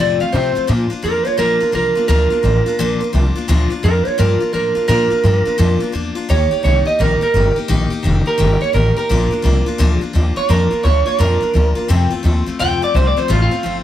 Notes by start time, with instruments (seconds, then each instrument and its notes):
Already playing: steel-string acoustic guitar F2
0.00 upright bass A2, steel-string acoustic guitar C3 F3 A3 C4 F4, clean electric guitar D5
0.20 steel-string acoustic guitar F3 A3 C4 F4, clean electric guitar F5, muted upright bass stroke
0.32 upright bass C3, steel-string acoustic guitar F3 A3 C4 F4, clean electric guitar C5
0.55 steel-string acoustic guitar F3 A3 C4 F4, muted upright bass stroke
0.67 steel-string acoustic guitar A#2 F3 A#3 D4 F4, upright bass A#2
0.90 steel-string acoustic guitar A#3 D4 F4, muted upright bass stroke
1.02 upright bass F2, steel-string acoustic guitar F3 A#3 D4 F4, clean electric guitar A#4
1.25 steel-string acoustic guitar A#3 D4 F4, clean electric guitar C#5, muted upright bass stroke
1.37 upright bass A#1, steel-string acoustic guitar A#2 F3 A#3 D4 F4, clean electric guitar A#4
1.60 steel-string acoustic guitar A#3 D4 F4, muted upright bass stroke
1.72 upright bass C2, steel-string acoustic guitar F3 A#3 D4 F4, clean electric guitar A#4
1.95 steel-string acoustic guitar A#3 D4 F4, muted upright bass stroke
2.08 upright bass D2, steel-string acoustic guitar A#2 F3 A#3 D4 F4, clean electric guitar A#4
2.30 steel-string acoustic guitar A#3 D4 F4, muted upright bass stroke
2.43 upright bass A1, steel-string acoustic guitar F3 A#3 D4 F4
2.66 steel-string acoustic guitar A#3 D4 F4, muted upright bass stroke
2.79 upright bass A#1, steel-string acoustic guitar A#2 F3 A#3 D4 F4
3.00 steel-string acoustic guitar D4 F4, muted upright bass stroke
3.13 upright bass C2, steel-string acoustic guitar F3 A#3 D4 F4
3.36 steel-string acoustic guitar A#3 D4 F4, muted upright bass stroke
3.48 upright bass D2, steel-string acoustic guitar A#2 F3 A#3 D4 F4
3.70 steel-string acoustic guitar A#3 D4 F4, muted upright bass stroke
3.83 upright bass F2, steel-string acoustic guitar F3 A#3 D4 F4, clean electric guitar A#4
4.05 steel-string acoustic guitar A#3 D4 F4, clean electric guitar C#5, muted upright bass stroke
4.18 upright bass G2, steel-string acoustic guitar A#2 F3 A#3 D4 F4, clean electric guitar A#4
4.40 steel-string acoustic guitar A#3 D4 F4, muted upright bass stroke
4.53 upright bass A2, steel-string acoustic guitar F3 A#3 D4 F4, clean electric guitar A#4
4.75 steel-string acoustic guitar A#3 D4 F4, muted upright bass stroke
4.88 steel-string acoustic guitar A#2 F3 A#3 D4 F4, upright bass A#2, clean electric guitar A#4
5.10 steel-string acoustic guitar A#3 D4 F4, muted upright bass stroke
5.24 upright bass G2, steel-string acoustic guitar F3 A#3 D4 F4
5.45 steel-string acoustic guitar A#3 D4 F4, muted upright bass stroke
5.58 upright bass F2, steel-string acoustic guitar A#2 F3 A#3 D4 F4
5.80 steel-string acoustic guitar A#3 D4 F4, muted upright bass stroke
5.92 upright bass E2, steel-string acoustic guitar F3 A#3 D4 F4
6.15 steel-string acoustic guitar A#3 D4 F4, muted upright bass stroke
6.29 upright bass D#2, steel-string acoustic guitar D#3 A#3 D#4 G4, clean electric guitar C#5
6.51 steel-string acoustic guitar A#3 D#4 G4, muted upright bass stroke
6.63 upright bass C2, steel-string acoustic guitar D#3 A#3 D#4 G4, clean electric guitar C#5
6.85 steel-string acoustic guitar A#3 D#4 G4, clean electric guitar D#5, muted upright bass stroke
6.99 upright bass A#1, steel-string acoustic guitar D#3 A#3 D#4 G4, clean electric guitar A#4
7.21 steel-string acoustic guitar A#3 D#4 G4, clean electric guitar A#4, muted upright bass stroke
7.34 upright bass G1, steel-string acoustic guitar D#3 A#3 D#4 G4
7.56 steel-string acoustic guitar A#3 D#4 G4, muted upright bass stroke
7.68 upright bass A#1, steel-string acoustic guitar D#3 A#3 D#4 G4
7.90 steel-string acoustic guitar A#3 D#4 G4, muted upright bass stroke
8.03 upright bass F1, steel-string acoustic guitar D#3 A#3 D#4 G4
8.26 steel-string acoustic guitar A#3 D#4 G4, clean electric guitar A#4, muted upright bass stroke
8.38 upright bass G1, steel-string acoustic guitar D#3 A#3 D#4 G4
8.61 steel-string acoustic guitar A#3 D#4 G4, clean electric guitar C#5, muted upright bass stroke
8.73 upright bass A1, steel-string acoustic guitar D#3 A#3 D#4 G4, clean electric guitar A#4
8.96 steel-string acoustic guitar A#3 D#4 G4, clean electric guitar A#4, muted upright bass stroke
9.09 upright bass A#1, steel-string acoustic guitar A#2 F3 A#3 D4 F4
9.31 steel-string acoustic guitar A#3 D4 F4, muted upright bass stroke
9.42 upright bass C2, steel-string acoustic guitar F3 A#3 D4 F4
9.66 steel-string acoustic guitar A#3 D4 F4, muted upright bass stroke
9.78 upright bass D2, steel-string acoustic guitar A#2 F3 A#3 D4 F4
10.01 steel-string acoustic guitar A#3 D4 F4, muted upright bass stroke
10.13 upright bass D#2, steel-string acoustic guitar F3 A#3 D4 F4
10.36 steel-string acoustic guitar A#3 D4 F4, clean electric guitar C#5, muted upright bass stroke
10.49 upright bass F2, steel-string acoustic guitar A#2 F3 A#3 D4 F4, clean electric guitar A#4
10.71 steel-string acoustic guitar A#3 D4 F4, muted upright bass stroke
10.83 upright bass D2, steel-string acoustic guitar F3 A#3 D4 F4, clean electric guitar C#5
11.06 steel-string acoustic guitar A#3 D4 F4, clean electric guitar C#5, muted upright bass stroke
11.19 upright bass F2, steel-string acoustic guitar A#2 F3 A#3 D4 F4, clean electric guitar A#4
11.41 steel-string acoustic guitar A#3 D4 F4, muted upright bass stroke
11.54 upright bass D2, steel-string acoustic guitar F3 A#3 D4 F4
11.75 steel-string acoustic guitar A#3 D4 F4, muted upright bass stroke
11.88 steel-string acoustic guitar F2 C3 F3 A3 C4 F4, upright bass F2
12.10 steel-string acoustic guitar F3 A3 C4 F4, muted upright bass stroke
12.23 upright bass D#2, steel-string acoustic guitar F3 A3 C4 F4
12.46 steel-string acoustic guitar F3 A3 C4 F4, muted upright bass stroke
12.59 upright bass D2, steel-string acoustic guitar F2 C3 F3 A3 C4 F4, clean electric guitar G5
12.82 steel-string acoustic guitar F3 A3 C4 F4, clean electric guitar D5, muted upright bass stroke
12.94 upright bass C2, steel-string acoustic guitar F3 A3 C4 F4, clean electric guitar C5
13.07 clean electric guitar D5
13.17 steel-string acoustic guitar F3 A3 C4 F4, clean electric guitar C5, muted upright bass stroke
13.28 upright bass A1, steel-string acoustic guitar F2 C3 F3 A3 C4 F4, clean electric guitar F4
13.42 clean electric guitar F4
13.51 steel-string acoustic guitar F3 A3 C4 F4, muted upright bass stroke
13.63 upright bass G1, steel-string acoustic guitar F3 A3 C4 F4